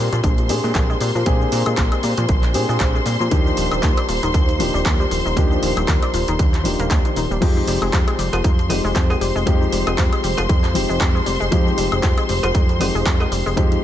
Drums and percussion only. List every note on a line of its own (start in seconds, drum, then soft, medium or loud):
0.13 closed hi-hat medium
0.13 cabasa soft
0.24 kick loud
0.24 closed hi-hat medium
0.24 cabasa soft
0.38 closed hi-hat soft
0.38 cabasa soft
0.49 open hi-hat loud
0.49 cabasa medium
0.64 cabasa soft
0.75 kick loud
0.75 clap loud
0.75 closed hi-hat medium
0.75 cabasa soft
0.90 cabasa soft
1.01 open hi-hat loud
1.01 cabasa medium
1.16 cabasa soft
1.26 kick loud
1.26 closed hi-hat medium
1.26 cabasa soft
1.41 cabasa soft
1.52 open hi-hat loud
1.52 cabasa medium
1.66 closed hi-hat soft
1.66 cabasa soft
1.66 high woodblock medium
1.77 kick loud
1.77 clap loud
1.77 closed hi-hat medium
1.77 cabasa soft
1.92 closed hi-hat medium
1.92 cabasa soft
1.92 high woodblock medium
2.03 open hi-hat medium
2.03 cabasa medium
2.17 closed hi-hat medium
2.17 cabasa soft
2.29 kick loud
2.29 closed hi-hat medium
2.29 cabasa soft
2.43 clap soft
2.43 closed hi-hat soft
2.43 cabasa soft
2.54 open hi-hat loud
2.54 cabasa medium
2.69 cabasa soft
2.80 kick loud
2.80 clap loud
2.80 closed hi-hat medium
2.80 cabasa soft
2.95 cabasa soft
3.06 open hi-hat medium
3.06 cabasa medium
3.21 cabasa soft
3.31 kick loud
3.31 closed hi-hat medium
3.31 cabasa soft
3.47 cabasa soft
3.57 open hi-hat loud
3.57 cabasa medium
3.71 closed hi-hat soft
3.71 cabasa soft
3.71 high woodblock medium
3.83 kick loud
3.83 clap loud
3.83 closed hi-hat medium
3.83 cabasa soft
3.97 closed hi-hat medium
3.97 cabasa soft
3.97 high woodblock medium
4.09 open hi-hat medium
4.09 cabasa medium
4.23 closed hi-hat medium
4.23 cabasa soft
4.34 kick loud
4.34 closed hi-hat medium
4.34 cabasa soft
4.49 closed hi-hat soft
4.49 cabasa soft
4.60 open hi-hat loud
4.60 cabasa medium
4.75 cabasa soft
4.85 kick loud
4.85 clap loud
4.85 closed hi-hat medium
4.85 cabasa soft
5.01 cabasa soft
5.11 open hi-hat medium
5.11 cabasa medium
5.27 cabasa soft
5.37 kick loud
5.37 closed hi-hat medium
5.37 cabasa soft
5.52 cabasa soft
5.63 open hi-hat loud
5.63 cabasa medium
5.77 closed hi-hat soft
5.77 cabasa soft
5.77 high woodblock medium
5.88 kick loud
5.88 clap loud
5.88 closed hi-hat medium
5.88 cabasa soft
6.03 closed hi-hat medium
6.03 cabasa soft
6.03 high woodblock medium
6.14 open hi-hat medium
6.14 cabasa medium
6.28 closed hi-hat medium
6.28 cabasa soft
6.39 kick loud
6.39 closed hi-hat medium
6.39 cabasa soft
6.54 clap soft
6.54 closed hi-hat soft
6.54 cabasa soft
6.65 open hi-hat loud
6.65 cabasa medium
6.80 closed hi-hat soft
6.80 cabasa soft
6.90 kick loud
6.90 clap loud
6.90 closed hi-hat medium
6.90 cabasa soft
7.05 closed hi-hat soft
7.05 cabasa soft
7.16 open hi-hat medium
7.16 cabasa medium
7.31 cabasa soft
7.42 kick loud
7.42 closed hi-hat medium
7.42 crash medium
7.42 cabasa soft
7.57 cabasa soft
7.68 open hi-hat loud
7.68 cabasa medium
7.82 closed hi-hat soft
7.82 cabasa soft
7.82 high woodblock medium
7.93 kick loud
7.93 clap loud
7.93 closed hi-hat medium
7.93 cabasa soft
8.08 closed hi-hat medium
8.08 cabasa soft
8.08 high woodblock medium
8.19 open hi-hat medium
8.19 cabasa medium
8.33 closed hi-hat medium
8.33 cowbell medium
8.33 cabasa soft
8.44 kick loud
8.44 closed hi-hat medium
8.44 cabasa soft
8.59 closed hi-hat soft
8.59 cabasa soft
8.70 open hi-hat loud
8.70 cowbell medium
8.70 cabasa medium
8.85 cabasa soft
8.96 kick loud
8.96 clap loud
8.96 closed hi-hat medium
8.96 cabasa soft
9.10 cowbell medium
9.10 cabasa soft
9.21 open hi-hat medium
9.21 cabasa medium
9.36 cabasa soft
9.47 kick loud
9.47 closed hi-hat medium
9.47 cabasa soft
9.62 cabasa soft
9.72 open hi-hat loud
9.72 cabasa medium
9.87 closed hi-hat soft
9.87 cowbell medium
9.87 cabasa soft
9.87 high woodblock medium
9.98 kick loud
9.98 clap loud
9.98 closed hi-hat medium
9.98 cabasa soft
10.13 closed hi-hat medium
10.13 cabasa soft
10.13 high woodblock medium
10.24 open hi-hat loud
10.24 cabasa medium
10.38 closed hi-hat medium
10.38 cowbell medium
10.38 cabasa soft
10.49 kick loud
10.49 closed hi-hat medium
10.49 cabasa soft
10.64 clap soft
10.64 closed hi-hat soft
10.64 cabasa soft
10.75 open hi-hat loud
10.75 cabasa medium
10.90 cabasa soft
11.01 kick loud
11.01 clap loud
11.01 closed hi-hat medium
11.01 cabasa soft
11.16 cabasa soft
11.26 open hi-hat loud
11.26 cabasa medium
11.42 cabasa soft
11.52 kick loud
11.52 closed hi-hat medium
11.52 cabasa soft
11.67 cabasa soft
11.78 open hi-hat loud
11.78 cabasa medium
11.92 closed hi-hat soft
11.92 cabasa soft
11.92 high woodblock medium
12.03 kick loud
12.03 clap loud
12.03 closed hi-hat medium
12.03 cabasa soft
12.18 closed hi-hat medium
12.18 cabasa soft
12.18 high woodblock medium
12.29 open hi-hat loud
12.29 cabasa medium
12.43 closed hi-hat medium
12.43 cowbell medium
12.43 cabasa soft
12.55 kick loud
12.55 closed hi-hat medium
12.55 cabasa soft
12.69 closed hi-hat soft
12.69 cabasa soft
12.81 open hi-hat loud
12.81 cowbell medium
12.81 cabasa medium
12.96 cabasa soft
13.06 kick loud
13.06 clap loud
13.06 closed hi-hat medium
13.06 cabasa soft
13.20 cowbell medium
13.20 cabasa soft
13.32 open hi-hat loud
13.32 cabasa medium
13.47 cabasa soft
13.57 kick loud
13.57 closed hi-hat medium
13.57 cabasa soft
13.72 closed hi-hat soft
13.72 cabasa soft